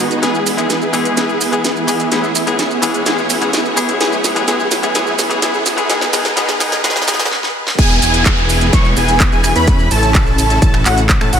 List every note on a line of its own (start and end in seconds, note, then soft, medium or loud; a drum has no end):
0.00 0.21 D#3 medium
0.00 2.08 G#3 medium
0.00 0.20 B3 medium
0.00 2.08 B3 medium
0.00 0.20 D#4 medium
0.00 0.20 F#4 medium
0.00 2.08 G#4 medium
0.00 0.21 B4 medium
0.00 riser medium
0.11 closed hi-hat soft
0.11 shaker soft
0.22 0.38 E3 medium
0.22 3.97 E3 medium
0.22 0.38 G#3 medium
0.22 0.43 B3 medium
0.22 0.38 B3 medium
0.22 0.43 E4 medium
0.22 0.43 G#4 loud
0.22 0.38 G#4 medium
0.22 2.10 B4 medium
0.22 snare soft
0.22 closed hi-hat medium
0.22 shaker soft
0.35 shaker soft
0.46 1.14 B3 medium
0.46 1.14 E4 medium
0.46 1.14 G#4 medium
0.46 open hi-hat medium
0.46 shaker medium
0.58 0.68 E3 medium
0.58 0.68 G#3 medium
0.58 0.68 B3 medium
0.58 0.68 G#4 medium
0.58 closed hi-hat medium
0.58 shaker soft
0.70 snare soft
0.70 closed hi-hat medium
0.70 shaker soft
0.82 shaker soft
0.93 1.15 E3 medium
0.93 1.15 G#3 medium
0.93 1.15 B3 medium
0.93 1.16 G#4 medium
0.93 open hi-hat medium
0.93 shaker medium
1.05 closed hi-hat soft
1.05 shaker soft
1.17 1.32 E3 medium
1.17 1.33 G#3 medium
1.17 1.38 B3 medium
1.17 1.33 B3 medium
1.17 1.38 E4 medium
1.17 1.38 G#4 loud
1.17 1.33 G#4 medium
1.17 snare medium
1.17 closed hi-hat medium
1.17 shaker soft
1.29 shaker soft
1.41 2.09 B3 medium
1.41 2.09 E4 medium
1.41 2.09 G#4 medium
1.41 open hi-hat loud
1.41 shaker medium
1.52 1.62 E3 medium
1.52 1.62 G#3 medium
1.52 1.62 B3 medium
1.52 1.63 G#4 medium
1.52 closed hi-hat medium
1.52 shaker soft
1.64 snare medium
1.64 closed hi-hat medium
1.64 shaker soft
1.76 shaker soft
1.87 2.10 E3 medium
1.87 2.10 G#3 medium
1.87 2.10 B3 medium
1.87 2.10 G#4 medium
1.87 open hi-hat medium
1.87 shaker medium
2.00 closed hi-hat soft
2.00 shaker soft
2.11 2.27 E3 medium
2.11 2.27 G#3 medium
2.11 5.86 A3 medium
2.11 2.32 B3 medium
2.11 2.27 B3 medium
2.11 3.99 C#4 medium
2.11 2.33 E4 medium
2.11 2.32 G#4 loud
2.11 2.27 G#4 medium
2.11 5.86 C#5 medium
2.11 snare medium
2.11 closed hi-hat medium
2.11 shaker soft
2.23 shaker soft
2.35 3.03 B3 medium
2.35 3.03 E4 medium
2.35 3.03 G#4 medium
2.35 open hi-hat loud
2.35 shaker medium
2.47 2.57 E3 medium
2.47 2.57 G#3 medium
2.47 2.57 B3 medium
2.47 2.57 G#4 medium
2.47 closed hi-hat medium
2.47 shaker soft
2.59 snare medium
2.59 closed hi-hat medium
2.59 shaker soft
2.71 shaker soft
2.82 3.04 E3 medium
2.82 3.04 G#3 medium
2.82 3.04 B3 medium
2.82 3.05 G#4 medium
2.82 open hi-hat medium
2.82 shaker medium
2.94 closed hi-hat medium
2.94 shaker soft
3.05 3.21 E3 medium
3.05 3.22 G#3 medium
3.05 3.27 B3 loud
3.05 3.22 B3 medium
3.05 3.27 E4 medium
3.05 3.27 G#4 loud
3.05 3.22 G#4 medium
3.05 snare medium
3.05 closed hi-hat medium
3.05 shaker soft
3.18 shaker soft
3.30 3.98 B3 medium
3.30 3.98 E4 medium
3.30 3.98 G#4 medium
3.30 open hi-hat loud
3.30 shaker medium
3.41 3.51 E3 medium
3.41 3.51 G#3 medium
3.41 3.51 B3 medium
3.41 3.52 G#4 medium
3.41 closed hi-hat medium
3.41 shaker soft
3.53 snare medium
3.53 closed hi-hat medium
3.53 shaker soft
3.65 shaker soft
3.76 3.98 E3 medium
3.76 3.99 G#3 medium
3.76 3.99 B3 medium
3.76 3.99 G#4 loud
3.76 open hi-hat medium
3.76 shaker medium
3.89 closed hi-hat medium
3.89 shaker soft
4.00 4.16 E3 medium
4.00 5.88 F#3 medium
4.00 4.16 G#3 medium
4.00 4.22 B3 loud
4.00 4.16 B3 medium
4.00 5.88 C#4 medium
4.00 4.21 E4 medium
4.00 4.22 G#4 loud
4.00 4.16 G#4 medium
4.00 snare medium
4.00 closed hi-hat medium
4.00 shaker soft
4.12 shaker soft
4.24 4.46 B3 medium
4.24 4.46 E4 medium
4.24 4.46 G#4 medium
4.24 snare medium
4.24 open hi-hat loud
4.24 shaker medium
4.36 4.46 E3 medium
4.36 4.46 G#3 medium
4.36 4.46 B3 medium
4.36 4.46 G#4 medium
4.36 closed hi-hat medium
4.36 shaker soft
4.47 4.63 E3 medium
4.47 4.63 G#3 medium
4.47 4.69 B3 medium
4.47 4.63 B3 medium
4.47 4.69 E4 medium
4.47 4.69 G#4 loud
4.47 4.64 G#4 loud
4.47 snare medium
4.47 closed hi-hat medium
4.47 shaker soft
4.60 shaker soft
4.71 4.93 B3 medium
4.71 4.93 E4 medium
4.71 4.93 G#4 medium
4.71 snare medium
4.71 open hi-hat medium
4.71 shaker medium
4.83 4.93 E3 medium
4.83 4.93 G#3 medium
4.83 4.93 B3 medium
4.83 4.93 G#4 medium
4.83 closed hi-hat medium
4.83 shaker soft
4.95 5.10 E3 medium
4.95 5.10 G#3 medium
4.95 5.16 B3 loud
4.95 5.11 B3 medium
4.95 5.16 E4 medium
4.95 5.16 G#4 loud
4.95 5.11 G#4 loud
4.95 snare medium
4.95 closed hi-hat medium
4.95 shaker soft
5.07 shaker soft
5.19 5.40 B3 medium
5.19 5.40 E4 medium
5.19 5.40 G#4 medium
5.19 snare medium
5.19 open hi-hat loud
5.19 shaker medium
5.30 5.40 E3 medium
5.30 5.40 G#3 medium
5.30 5.40 B3 medium
5.30 5.40 G#4 medium
5.30 closed hi-hat medium
5.30 shaker soft
5.41 5.57 E3 medium
5.41 5.58 G#3 medium
5.41 5.63 B3 loud
5.41 5.58 B3 medium
5.41 5.63 E4 medium
5.41 5.63 G#4 loud
5.41 5.58 G#4 medium
5.41 snare medium
5.41 closed hi-hat medium
5.41 shaker soft
5.54 shaker soft
5.66 5.88 B3 medium
5.66 5.88 E4 medium
5.66 5.88 G#4 medium
5.66 snare medium
5.66 open hi-hat medium
5.66 shaker medium
5.77 5.87 E3 medium
5.77 5.87 G#3 medium
5.77 5.88 B3 medium
5.77 5.88 G#4 medium
5.77 closed hi-hat medium
5.77 shaker soft
5.89 6.05 D#3 medium
5.89 7.30 D#3 medium
5.89 6.05 G#3 medium
5.89 7.30 G#3 medium
5.89 6.10 B3 loud
5.89 7.30 B3 medium
5.89 6.05 B3 medium
5.89 6.10 D#4 medium
5.89 6.10 G#4 loud
5.89 7.30 G#4 medium
5.89 6.05 G#4 medium
5.89 7.30 B4 medium
5.89 snare medium
5.89 closed hi-hat medium
5.89 shaker soft
6.01 snare medium
6.01 shaker soft
6.13 6.28 D#3 medium
6.13 6.29 G#3 medium
6.13 6.29 B3 medium
6.13 6.34 B3 loud
6.13 6.34 D#4 medium
6.13 6.34 G#4 loud
6.13 6.29 G#4 medium
6.13 snare medium
6.13 open hi-hat loud
6.13 shaker medium
6.25 snare medium
6.25 closed hi-hat medium
6.25 shaker soft
6.36 6.52 D#3 medium
6.36 6.52 G#3 medium
6.36 6.52 B3 medium
6.36 6.58 B3 loud
6.36 6.58 D#4 medium
6.36 6.58 G#4 loud
6.36 6.52 G#4 medium
6.36 snare medium
6.36 closed hi-hat medium
6.36 shaker soft
6.49 snare medium
6.49 closed hi-hat soft
6.49 shaker soft
6.60 6.76 D#3 medium
6.60 6.76 G#3 medium
6.60 6.81 B3 loud
6.60 6.76 B3 medium
6.60 6.81 D#4 medium
6.60 6.81 G#4 loud
6.60 6.76 G#4 loud
6.60 snare loud
6.60 open hi-hat medium
6.60 shaker medium
6.72 snare medium
6.72 closed hi-hat medium
6.72 shaker soft
6.83 6.99 D#3 medium
6.83 6.99 G#3 medium
6.83 7.05 B3 loud
6.83 7.00 B3 medium
6.83 7.05 D#4 medium
6.83 7.05 G#4 loud
6.83 7.00 G#4 loud
6.83 snare loud
6.83 closed hi-hat medium
6.83 shaker soft
6.90 snare loud
6.96 snare medium
6.96 shaker soft
7.02 snare medium
7.07 7.23 D#3 medium
7.07 7.23 G#3 medium
7.07 7.29 B3 loud
7.07 7.23 B3 medium
7.07 7.29 D#4 loud
7.07 7.29 G#4 loud
7.07 7.24 G#4 loud
7.07 snare loud
7.07 open hi-hat loud
7.07 shaker medium
7.14 snare medium
7.20 snare medium
7.20 closed hi-hat medium
7.20 shaker soft
7.25 snare medium
7.31 snare medium
7.43 snare medium
7.67 snare medium
7.79 8.00 E1 medium
7.79 11.40 E3 medium
7.79 9.66 G#3 medium
7.79 7.99 B3 loud
7.79 9.66 B3 medium
7.79 7.99 E4 medium
7.79 7.99 G#4 loud
7.79 9.66 G#4 medium
7.79 9.66 B4 medium
7.79 7.99 G#5 loud
7.79 kick loud
7.79 closed hi-hat medium
7.79 crash loud
7.79 downlifter medium
7.79 shaker soft
7.90 shaker soft
8.02 8.71 E1 loud
8.02 8.70 B3 medium
8.02 8.70 E4 medium
8.02 8.70 G#4 medium
8.02 8.70 G#5 medium
8.02 open hi-hat loud
8.02 shaker medium
8.14 closed hi-hat medium
8.14 shaker soft
8.26 finger snap medium
8.26 kick loud
8.26 clap loud
8.26 closed hi-hat medium
8.26 shaker soft
8.38 shaker soft
8.49 open hi-hat loud
8.49 shaker medium
8.61 closed hi-hat medium
8.61 shaker soft
8.73 8.94 E1 loud
8.73 8.94 B3 medium
8.73 8.94 E4 medium
8.73 8.94 C#5 medium
8.73 8.94 C#6 medium
8.73 kick loud
8.73 closed hi-hat medium
8.73 shaker soft
8.85 shaker soft
8.97 9.30 E1 loud
8.97 9.29 B3 medium
8.97 9.29 E4 medium
8.97 9.29 G#4 loud
8.97 9.29 G#5 medium
8.97 open hi-hat loud
8.97 shaker medium
9.08 closed hi-hat medium
9.08 shaker soft
9.20 kick loud
9.20 clap loud
9.20 closed hi-hat medium
9.20 shaker soft
9.32 9.53 E1 medium
9.32 9.53 B3 medium
9.32 9.53 E4 medium
9.32 9.53 G#4 loud
9.32 9.53 G#5 loud
9.32 shaker soft
9.44 finger snap medium
9.44 open hi-hat loud
9.44 shaker medium
9.56 9.89 E2 loud
9.56 9.88 C#4 loud
9.56 9.88 E4 medium
9.56 9.88 B4 loud
9.56 9.88 B5 loud
9.56 closed hi-hat medium
9.56 shaker soft
9.67 11.40 C#3 medium
9.67 11.40 A3 medium
9.67 11.40 E4 medium
9.67 11.40 A4 medium
9.67 kick loud
9.67 closed hi-hat medium
9.67 shaker soft
9.79 shaker soft
9.91 10.60 A1 medium
9.91 10.59 C#4 medium
9.91 10.59 E4 medium
9.91 10.59 A4 loud
9.91 10.59 A5 loud
9.91 open hi-hat loud
9.91 shaker medium
10.03 closed hi-hat medium
10.03 shaker soft
10.15 kick loud
10.15 clap loud
10.15 closed hi-hat medium
10.15 shaker soft
10.27 shaker soft
10.38 open hi-hat loud
10.38 shaker medium
10.50 closed hi-hat medium
10.50 shaker soft
10.62 10.83 A1 loud
10.62 10.83 C#4 medium
10.62 10.83 E4 medium
10.62 10.83 A4 medium
10.62 10.83 A5 medium
10.62 kick loud
10.62 closed hi-hat medium
10.62 shaker soft
10.74 finger snap medium
10.74 shaker soft
10.86 11.19 A1 loud
10.86 11.01 C#4 loud
10.86 11.01 E4 medium
10.86 11.01 F#4 loud
10.86 11.01 F#5 loud
10.86 clap medium
10.86 open hi-hat loud
10.86 shaker medium
10.98 closed hi-hat medium
10.98 shaker soft
11.09 kick loud
11.09 clap loud
11.09 closed hi-hat medium
11.09 shaker soft
11.21 11.31 A2 medium
11.21 11.30 C#4 medium
11.21 11.30 E4 medium
11.21 11.30 A4 medium
11.21 11.30 A5 medium
11.21 finger snap medium
11.21 shaker soft
11.33 11.40 A1 loud
11.33 11.40 C#4 medium
11.33 11.40 E4 medium
11.33 11.40 F#4 medium
11.33 11.40 F#5 loud
11.33 open hi-hat medium
11.33 shaker medium